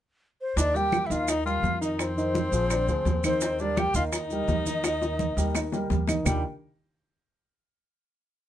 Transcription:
0.41 0.57 C5 medium
0.56 1.06 D#2 medium
0.56 0.72 D#3 medium
0.56 0.77 D4 medium
0.56 0.72 D#4 medium
0.56 0.78 D5 medium
0.56 0.72 D#5 medium
0.56 high bongo medium
0.56 high conga soft
0.56 maracas medium
0.75 1.04 G3 medium
0.75 1.07 G4 medium
0.75 1.04 G4 medium
0.75 1.05 A#4 medium
0.75 1.08 G5 loud
0.75 high bongo soft
0.75 high conga soft
0.75 maracas soft
0.92 high bongo medium
0.92 high conga medium
0.92 claves medium
0.92 maracas soft
1.05 1.12 E4 medium
1.05 1.14 E5 medium
1.10 1.60 D#2 medium
1.10 1.39 D#3 medium
1.10 1.39 D#4 medium
1.10 1.30 F4 medium
1.10 1.40 D#5 medium
1.10 1.32 F5 medium
1.10 high bongo soft
1.10 high conga soft
1.10 maracas medium
1.28 1.45 D#4 medium
1.28 1.47 D#5 medium
1.28 high bongo medium
1.28 high conga soft
1.28 claves medium
1.28 maracas medium
1.45 1.75 G3 medium
1.45 1.79 F4 medium
1.45 1.75 G4 medium
1.45 1.75 A#4 medium
1.45 1.80 F5 loud
1.45 high bongo soft
1.45 high conga soft
1.45 maracas soft
1.63 2.46 F2 medium
1.63 high bongo soft
1.63 low bongo medium
1.63 high conga medium
1.63 maracas soft
1.81 2.10 D#3 medium
1.81 2.02 D#4 medium
1.81 2.11 D#4 medium
1.81 2.11 D#5 medium
1.81 2.02 D#5 medium
1.81 maracas medium
1.99 3.24 C4 medium
1.99 3.25 C5 loud
1.99 high bongo medium
1.99 high conga soft
1.99 claves medium
1.99 maracas medium
2.17 2.46 D#3 medium
2.17 2.47 D#4 medium
2.17 2.47 D#5 medium
2.17 high bongo soft
2.17 high conga soft
2.17 maracas soft
2.35 high bongo medium
2.35 high conga medium
2.35 maracas soft
2.52 2.85 A#1 medium
2.52 2.67 F3 medium
2.52 2.68 F4 medium
2.52 2.68 G#4 medium
2.52 high bongo soft
2.52 high conga soft
2.52 maracas medium
2.70 2.86 D3 medium
2.70 2.86 D4 medium
2.70 2.86 D5 medium
2.70 high bongo medium
2.70 high conga soft
2.70 claves medium
2.70 maracas medium
2.87 3.04 D2 medium
2.87 3.18 F3 medium
2.87 3.18 F4 medium
2.87 3.18 G#4 medium
2.87 high bongo soft
2.87 high conga soft
2.87 maracas soft
3.05 3.89 D#2 medium
3.05 high bongo soft
3.05 low bongo medium
3.05 high conga medium
3.05 maracas soft
3.24 3.39 D#3 medium
3.24 3.62 C4 medium
3.24 3.39 D#4 medium
3.24 3.63 C5 medium
3.24 3.39 D#5 medium
3.24 high conga medium
3.24 claves medium
3.24 maracas medium
3.41 3.57 D#3 medium
3.41 3.57 D#4 medium
3.41 3.57 D#5 medium
3.41 high bongo medium
3.41 high conga soft
3.41 maracas medium
3.59 3.89 G3 medium
3.59 3.79 D4 medium
3.59 3.89 G4 medium
3.59 3.89 A#4 medium
3.59 3.81 D5 medium
3.59 high bongo soft
3.59 high conga soft
3.59 maracas soft
3.77 3.95 G4 medium
3.77 3.96 G5 medium
3.77 high bongo medium
3.77 high conga medium
3.77 claves medium
3.77 maracas soft
3.94 4.44 D#2 medium
3.94 4.25 D#3 medium
3.94 4.25 D#4 medium
3.94 4.04 F4 medium
3.94 4.25 D#5 medium
3.94 4.03 F5 medium
3.94 high bongo soft
3.94 high conga soft
3.94 maracas medium
4.12 5.87 D#4 medium
4.12 5.88 D#5 medium
4.12 high bongo medium
4.12 high conga soft
4.12 claves medium
4.12 maracas medium
4.30 4.61 G3 medium
4.30 4.61 G4 medium
4.30 4.61 A#4 medium
4.30 high bongo soft
4.30 high conga soft
4.30 maracas soft
4.48 5.31 D#2 medium
4.48 high bongo soft
4.48 low bongo medium
4.48 high conga medium
4.48 maracas soft
4.66 4.96 D#3 medium
4.66 4.96 D#4 medium
4.66 4.96 D#5 medium
4.66 high conga medium
4.66 maracas medium
4.84 high bongo medium
4.84 high conga soft
4.84 claves medium
4.84 maracas medium
5.02 5.31 D#3 medium
5.02 5.31 D#4 medium
5.02 5.32 D#5 medium
5.02 high bongo medium
5.02 high conga soft
5.02 maracas soft
5.19 high conga medium
5.19 maracas soft
5.37 5.87 D#2 medium
5.37 5.52 G3 medium
5.37 5.52 G4 medium
5.37 5.52 A#4 medium
5.37 high conga soft
5.37 maracas medium
5.55 5.70 D#3 medium
5.55 5.70 D#4 medium
5.55 5.70 D#5 medium
5.55 low bongo medium
5.55 high conga soft
5.55 claves medium
5.55 maracas medium
5.72 6.02 G3 medium
5.72 6.02 G4 medium
5.72 6.02 A#4 medium
5.72 low bongo medium
5.72 high conga soft
5.72 maracas soft
5.90 6.22 D#2 medium
5.90 low bongo medium
5.90 high conga medium
5.90 maracas soft
6.07 6.23 D#3 medium
6.07 6.23 D#4 medium
6.07 6.23 D#5 medium
6.07 low bongo medium
6.07 high conga medium
6.07 claves medium
6.07 maracas medium
6.25 6.42 D#2 medium
6.25 6.42 D#3 medium
6.25 6.43 G3 medium
6.25 6.42 A#3 medium
6.25 6.42 D4 medium
6.25 6.42 D#4 medium
6.25 6.42 F4 medium
6.25 6.42 G4 medium
6.25 6.43 G5 medium
6.25 low bongo loud
6.25 low conga loud
6.25 claves medium
6.25 maracas medium

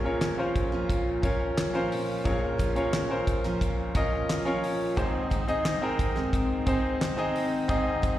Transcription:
0.00 2.22 A#1 medium
0.00 2.22 A#2 medium
0.00 0.72 F3 medium
0.00 0.04 C#4 medium
0.00 0.72 C#4 medium
0.00 0.05 F4 medium
0.00 0.71 F4 medium
0.00 0.05 A#4 medium
0.00 0.71 A#4 medium
0.00 0.06 C#5 medium
0.04 0.35 C#4 medium
0.04 0.35 F4 medium
0.04 0.35 A#4 medium
0.04 0.35 C#5 medium
0.21 snare loud
0.21 clap medium
0.21 closed hi-hat medium
0.38 1.13 C#4 medium
0.38 1.14 F4 medium
0.38 1.14 A#4 medium
0.38 1.14 C5 medium
0.56 kick medium
0.56 closed hi-hat medium
0.72 1.24 A#2 medium
0.72 1.22 F3 medium
0.72 1.23 C#4 medium
0.72 1.24 F4 medium
0.72 1.23 A#4 medium
0.89 kick medium
0.89 closed hi-hat medium
1.22 1.74 F3 medium
1.22 1.68 C#4 medium
1.22 1.74 C#4 medium
1.22 1.68 F4 medium
1.22 1.73 F4 medium
1.22 1.69 A#4 medium
1.22 1.73 A#4 medium
1.22 1.69 C#5 medium
1.22 kick medium
1.22 closed hi-hat medium
1.58 snare loud
1.58 clap medium
1.58 closed hi-hat medium
1.74 2.26 A#2 medium
1.74 2.24 F3 medium
1.74 2.19 C#4 medium
1.74 2.25 C#4 medium
1.74 2.19 F4 medium
1.74 2.26 F4 medium
1.74 2.25 A#4 medium
1.74 2.20 A#4 medium
1.74 2.20 C5 medium
1.92 open hi-hat medium
2.24 4.93 A#1 medium
2.24 4.93 A#2 medium
2.24 2.57 F3 medium
2.24 2.70 C#4 medium
2.24 2.58 C#4 medium
2.24 2.70 F4 medium
2.24 2.59 F4 medium
2.24 2.70 A#4 medium
2.24 2.60 A#4 medium
2.24 2.71 C#5 medium
2.24 kick medium
2.24 closed hi-hat medium
2.58 3.44 F3 medium
2.58 3.44 C#4 medium
2.58 3.43 F4 medium
2.58 3.43 A#4 medium
2.58 kick medium
2.58 closed hi-hat medium
2.76 3.06 C#4 medium
2.76 3.06 F4 medium
2.76 3.07 A#4 medium
2.76 3.07 C#5 medium
2.76 closed hi-hat soft
2.93 snare loud
2.93 clap medium
2.93 closed hi-hat medium
3.10 3.85 C#4 medium
3.10 3.85 F4 medium
3.10 3.86 A#4 medium
3.10 3.86 C5 medium
3.27 kick medium
3.27 closed hi-hat medium
3.44 3.96 A#2 medium
3.44 3.93 F3 medium
3.44 3.95 C#4 medium
3.44 3.95 F4 medium
3.44 3.95 A#4 medium
3.44 snare soft
3.44 closed hi-hat soft
3.61 kick medium
3.61 closed hi-hat medium
3.94 4.46 F3 medium
3.94 4.40 C#4 medium
3.94 4.45 C#4 medium
3.94 4.40 F4 medium
3.94 4.45 F4 medium
3.94 4.41 A#4 medium
3.94 4.44 A#4 medium
3.94 4.41 D#5 medium
3.94 kick medium
3.94 closed hi-hat medium
4.30 snare loud
4.30 clap medium
4.30 closed hi-hat medium
4.45 4.98 A#2 medium
4.45 4.96 F3 medium
4.45 4.91 C#4 medium
4.45 4.97 C#4 medium
4.45 4.91 F4 medium
4.45 4.97 F4 medium
4.45 4.97 A#4 medium
4.45 4.91 A#4 medium
4.45 4.92 C#5 medium
4.64 open hi-hat medium
4.96 7.65 G#1 medium
4.96 7.65 G#2 medium
4.96 5.29 G#3 medium
4.96 5.42 C4 medium
4.96 5.30 C4 medium
4.96 5.42 D#4 medium
4.96 5.31 D#4 medium
4.96 5.42 G#4 medium
4.96 5.32 G#4 medium
4.96 5.43 C5 medium
4.96 kick medium
4.96 closed hi-hat medium
5.30 6.16 G#3 medium
5.30 6.15 C4 medium
5.30 6.15 D#4 medium
5.30 6.14 G#4 medium
5.30 kick medium
5.30 closed hi-hat medium
5.48 5.78 C4 medium
5.48 5.78 D#4 medium
5.48 5.78 G#4 medium
5.48 5.79 D#5 medium
5.48 closed hi-hat soft
5.65 snare loud
5.65 clap medium
5.65 closed hi-hat medium
5.82 6.57 C4 medium
5.82 6.57 D#4 medium
5.82 6.57 G#4 medium
5.82 6.58 A#4 medium
5.99 kick medium
5.99 closed hi-hat medium
6.15 6.68 G#2 medium
6.15 6.68 D#3 medium
6.15 6.65 G#3 medium
6.15 6.66 C4 medium
6.15 6.67 D#4 medium
6.15 6.67 G#4 medium
6.15 snare soft
6.33 kick medium
6.33 closed hi-hat medium
6.66 7.18 G#3 medium
6.66 7.12 C4 medium
6.66 7.17 C4 medium
6.66 7.12 D#4 medium
6.66 7.17 D#4 medium
6.66 7.12 G#4 medium
6.66 7.16 G#4 medium
6.66 7.12 C5 medium
6.66 kick medium
6.66 closed hi-hat medium
7.01 snare loud
7.01 clap medium
7.01 closed hi-hat medium
7.17 7.70 G#2 medium
7.17 7.70 D#3 medium
7.17 7.67 G#3 medium
7.17 7.62 C4 medium
7.17 7.68 C4 medium
7.17 7.63 D#4 medium
7.17 7.69 D#4 medium
7.17 7.69 G#4 medium
7.17 7.63 G#4 medium
7.17 7.63 D#5 medium
7.36 open hi-hat medium
7.68 8.19 G#1 medium
7.68 8.19 G#2 medium
7.68 8.01 G#3 medium
7.68 8.14 C4 medium
7.68 8.02 C4 medium
7.68 8.14 D#4 medium
7.68 8.03 D#4 medium
7.68 8.14 G#4 medium
7.68 8.04 G#4 medium
7.68 8.14 D#5 medium
7.68 kick medium
7.68 closed hi-hat medium
8.02 8.19 G#3 medium
8.02 8.19 C4 medium
8.02 8.19 D#4 medium
8.02 8.19 G#4 medium
8.02 kick medium
8.02 closed hi-hat medium

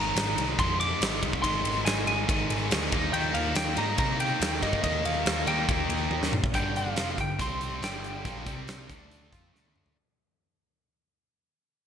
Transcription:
0.00 0.11 G#1 medium
0.00 0.57 G#2 medium
0.00 0.58 D#3 loud
0.00 0.58 G#3 loud
0.00 2.16 C4 medium
0.00 0.59 A#5 loud
0.16 0.33 G#1 medium
0.16 snare loud
0.16 ride loud
0.37 0.54 C2 medium
0.37 ride medium
0.58 0.93 F2 medium
0.58 1.41 G#2 medium
0.58 1.43 D#3 medium
0.58 1.44 G#3 loud
0.58 0.79 C6 loud
0.58 kick loud
0.58 ride loud
0.80 1.42 D6 loud
0.80 ride medium
1.01 1.18 G#1 medium
1.01 snare loud
1.01 ride loud
1.22 1.39 C2 loud
1.22 kick medium
1.22 ride medium
1.33 kick medium
1.42 1.61 G#1 loud
1.42 2.27 G#2 loud
1.42 2.28 D#3 loud
1.42 1.87 C6 loud
1.42 kick loud
1.42 ride loud
1.47 2.29 G#3 loud
1.64 1.82 G#1 medium
1.64 ride medium
1.85 2.03 G#1 medium
1.85 2.06 G#5 loud
1.85 snare loud
1.85 ride loud
2.07 2.24 G#1 medium
2.07 2.88 G#5 loud
2.07 ride medium
2.28 2.45 G#1 loud
2.28 2.91 G#2 medium
2.28 2.91 D#3 medium
2.28 2.92 G#3 medium
2.28 kick loud
2.28 ride loud
2.50 2.67 G#1 medium
2.50 ride medium
2.71 2.88 D2 medium
2.71 snare loud
2.71 ride loud
2.92 3.09 D#2 loud
2.92 3.80 D#3 loud
2.92 3.78 A#3 loud
2.92 3.76 D#4 loud
2.92 kick loud
2.92 ride medium
3.13 3.30 D#2 loud
3.13 3.33 G5 loud
3.13 ride loud
3.34 3.52 D#2 loud
3.34 3.56 F5 medium
3.34 ride medium
3.55 3.73 D#2 loud
3.55 3.78 G5 loud
3.55 snare loud
3.55 ride loud
3.76 3.94 G#2 medium
3.76 4.60 D#3 medium
3.76 4.63 A#3 medium
3.76 4.61 D#4 medium
3.76 3.98 A#5 loud
3.76 ride medium
3.98 4.32 C3 loud
3.98 4.19 A#5 loud
3.98 kick loud
3.98 ride loud
4.20 4.64 G5 loud
4.20 ride medium
4.40 4.58 D#2 medium
4.40 snare loud
4.40 ride loud
4.61 4.79 G2 loud
4.61 5.46 D#3 loud
4.61 5.47 A#3 loud
4.61 5.45 D#4 loud
4.61 4.82 D#5 loud
4.61 kick medium
4.61 ride medium
4.73 kick medium
4.83 5.01 D#2 loud
4.83 5.03 D#5 medium
4.83 kick loud
4.83 ride loud
5.05 5.22 D#2 medium
5.05 5.47 F5 loud
5.05 ride medium
5.26 5.43 D#2 medium
5.26 snare loud
5.26 ride loud
5.46 5.64 D#2 loud
5.46 6.32 D#3 medium
5.46 6.31 A#3 medium
5.46 6.31 D#4 medium
5.46 6.29 G5 medium
5.46 ride medium
5.68 5.85 D#2 loud
5.68 kick loud
5.68 ride loud
5.89 6.07 D#2 loud
5.89 ride medium
6.10 6.28 D#2 medium
6.10 high tom medium
6.23 snare medium
6.32 6.49 A#2 loud
6.32 mid tom medium
6.44 kick loud
6.54 6.94 G1 medium
6.54 6.96 G2 medium
6.54 6.96 D3 medium
6.54 6.96 G3 medium
6.54 6.74 G5 medium
6.54 kick loud
6.54 closed hi-hat medium
6.76 7.20 F5 medium
6.76 closed hi-hat medium
6.96 7.16 F1 medium
6.96 7.17 F2 medium
6.96 7.17 C3 loud
6.96 7.18 F3 medium
6.96 snare loud
6.96 closed hi-hat medium
7.18 7.38 G1 medium
7.18 7.35 G2 medium
7.18 7.35 D3 medium
7.18 7.41 G5 medium
7.18 kick medium
7.18 closed hi-hat medium
7.38 7.79 C2 medium
7.38 7.81 C3 medium
7.38 7.81 G3 medium
7.38 7.82 C4 loud
7.38 7.84 C6 loud
7.38 kick loud
7.38 closed hi-hat medium
7.61 closed hi-hat medium
7.81 8.21 G1 medium
7.81 8.24 G2 medium
7.81 8.24 D3 medium
7.81 8.24 G3 medium
7.81 9.50 G5 medium
7.81 snare loud
7.81 closed hi-hat medium
8.04 closed hi-hat medium
8.24 8.45 A#1 medium
8.24 8.45 A#2 medium
8.24 8.46 F3 medium
8.24 8.46 A#3 medium
8.24 kick loud
8.24 closed hi-hat medium
8.46 8.86 C2 medium
8.46 8.88 C3 medium
8.46 8.88 G3 medium
8.46 8.89 C4 medium
8.46 kick medium
8.46 closed hi-hat medium
8.68 snare loud
8.68 closed hi-hat medium
8.89 9.29 D2 medium
8.89 9.31 D3 medium
8.89 9.32 A3 medium
8.89 9.32 D4 medium
8.89 kick medium
8.89 closed hi-hat medium
9.11 closed hi-hat medium
9.32 9.52 F2 medium
9.32 9.52 F3 medium
9.32 9.53 C4 medium
9.32 9.53 F4 medium
9.32 kick medium
9.32 closed hi-hat medium
9.53 9.93 D2 medium
9.53 9.95 D3 medium
9.53 9.96 A3 medium
9.53 9.96 D4 medium
9.53 snare medium
9.65 high tom medium
9.76 mid tom medium
9.86 floor tom medium

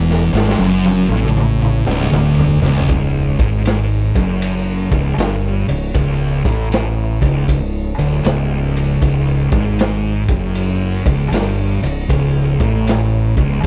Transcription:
0.00 0.29 E1 loud
0.00 0.32 E2 loud
0.10 snare soft
0.33 0.57 G#1 loud
0.33 0.58 G#2 loud
0.33 snare medium
0.48 snare medium
0.59 1.06 F#1 medium
0.59 1.08 F#2 loud
0.59 high tom medium
0.85 high tom medium
1.09 1.81 A1 loud
1.09 1.85 A2 loud
1.09 high tom medium
1.24 mid tom medium
1.37 mid tom medium
1.62 mid tom medium
1.86 2.10 C#1 loud
1.86 2.11 C#2 loud
1.86 mid tom medium
2.00 mid tom medium
2.12 2.59 D1 loud
2.12 2.61 D2 medium
2.12 mid tom loud
2.38 floor tom medium
2.61 2.86 C#1 loud
2.61 2.88 C#2 loud
2.61 floor tom loud
2.77 floor tom loud
2.89 3.35 C#1 medium
2.89 3.37 C#2 loud
2.89 kick loud
2.89 ride loud
3.39 4.11 G#1 loud
3.39 4.14 G#2 medium
3.39 kick loud
3.39 ride medium
3.65 snare loud
3.65 ride loud
4.15 4.88 F#1 medium
4.15 4.90 F#2 loud
4.15 kick loud
4.15 ride medium
4.42 ride loud
4.91 5.16 C#1 medium
4.91 5.17 C#2 loud
4.91 kick loud
4.91 ride medium
5.17 5.65 G1 medium
5.17 5.67 G2 medium
5.17 snare loud
5.17 ride loud
5.68 5.93 C#1 medium
5.68 5.89 C#2 medium
5.68 ride medium
5.94 6.41 C#1 medium
5.94 6.44 C#2 loud
5.94 kick loud
5.94 ride loud
6.45 7.18 A1 loud
6.45 7.20 A2 loud
6.45 kick loud
6.45 ride medium
6.72 snare loud
6.72 ride medium
7.22 7.46 C#1 loud
7.22 7.47 C#2 loud
7.22 kick loud
7.22 ride medium
7.48 7.95 C#1 medium
7.48 7.89 C#2 medium
7.48 kick medium
7.48 ride medium
7.98 8.23 D1 loud
7.98 8.24 D2 loud
7.98 ride medium
8.24 8.97 C#1 loud
8.24 9.01 C#2 medium
8.24 snare loud
8.24 ride loud
8.76 ride medium
9.01 9.48 C#1 medium
9.01 9.51 C#2 loud
9.01 kick loud
9.01 ride loud
9.52 10.25 G#1 medium
9.52 10.30 G#2 loud
9.52 kick loud
9.52 ride medium
9.79 snare loud
9.79 ride loud
10.28 11.01 F#1 medium
10.28 11.05 F#2 loud
10.28 kick loud
10.28 ride medium
10.55 ride loud
11.05 11.30 C#1 loud
11.05 11.32 C#2 loud
11.05 kick loud
11.05 ride medium
11.31 11.79 G1 loud
11.31 11.81 G2 loud
11.31 snare loud
11.31 ride loud
11.82 12.07 C#1 medium
11.82 12.04 C#2 medium
11.82 ride medium
12.09 12.56 C#1 loud
12.09 12.58 C#2 loud
12.09 kick loud
12.09 ride loud
12.60 13.33 A1 loud
12.60 13.35 A2 loud
12.60 kick loud
12.60 ride medium
12.87 snare loud
12.87 ride loud
13.37 13.61 C#1 loud
13.37 13.62 C#2 loud
13.37 kick loud
13.37 ride medium
13.63 13.67 E2 loud
13.63 kick loud

